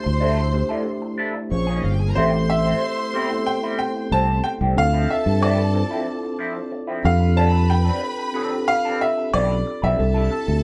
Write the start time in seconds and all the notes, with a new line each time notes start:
Already playing: A3 D4 E4 G4 C5 C6
0.04 D2, muted clean electric guitar stroke
0.20 D4 E4 A4
0.53 A3 D4 E4 G4 C5, muted clean electric guitar stroke
0.69 A3 D4 E4 G4 A4 D5
0.85 muted clean electric guitar stroke
1.02 muted clean electric guitar stroke
1.18 D4 E4 A4
1.35 muted clean electric guitar stroke
1.50 A#1 A#3 C#4 F4 G#4 C5 C#5 C#6, muted clean electric guitar stroke
1.59 C4 C5
1.67 A#3 C#4 G#4 C#5
1.76 D#4 D#5
1.82 G1 F4 F5, muted clean electric guitar stroke
1.91 G4 G5
1.99 G#4 G#5, muted clean electric guitar stroke
2.08 A#4 A#5
2.15 A1 G3 A3 C4 E4 G4 A4 C5 C6
2.32 muted clean electric guitar stroke
2.49 E5, muted clean electric guitar stroke
2.66 G3 C4 E4
2.82 muted clean electric guitar stroke
2.97 muted clean electric guitar stroke
3.13 G3 B3 C4 E4 G4 A4
3.30 A3 C4 E4 G4 A4, muted clean electric guitar stroke
3.46 G5, muted clean electric guitar stroke
3.63 G3 C4 E4
3.78 A3 C4 E4 G4 C5 G5, muted clean electric guitar stroke
3.96 muted clean electric guitar stroke
4.12 C2 G3 C4 G4 A5
4.44 G5, muted clean electric guitar stroke
4.61 C2 G3 C4 G4
4.76 D2 C4 D4 F4 A4 F5 A5, muted clean electric guitar stroke
4.93 F3 C4 E4
5.09 E5, muted clean electric guitar stroke
5.26 G2, muted clean electric guitar stroke
5.41 F3 C4 E4 D5
5.74 C4 D4 E4 F4 C5, muted clean electric guitar stroke
5.91 F3 C4 D4 E4 F4 A4
6.23 muted clean electric guitar stroke
6.39 F3 C4 E4
6.55 muted clean electric guitar stroke
6.71 muted clean electric guitar stroke
6.87 F3 C4 E4
7.04 F2 C4 D4 F4 G4 A4 B4 F5 B5, muted clean electric guitar stroke
7.20 muted clean electric guitar stroke
7.36 C4 D4 A4 A5
7.53 muted clean electric guitar stroke
7.69 G5, muted clean electric guitar stroke
7.85 C4 D4 A4
8.02 muted clean electric guitar stroke
8.19 muted clean electric guitar stroke
8.33 C4 D4 F4 G4 A4
8.50 C4 D4 F4 G4 A4, muted clean electric guitar stroke
8.68 F5, muted clean electric guitar stroke
8.85 C4 D4 A4
9.00 C4 D4 F4 G4 A4 E5, muted clean electric guitar stroke
9.18 muted clean electric guitar stroke
9.34 B1 C4 D4 B4 D5
9.66 muted clean electric guitar stroke
9.82 B1 C4 D4 B4 E5
9.97 C2 C4 D4 E4 G4 A4 A5, muted clean electric guitar stroke
10.14 D4 E4 A4
10.31 muted clean electric guitar stroke
10.47 D2, muted clean electric guitar stroke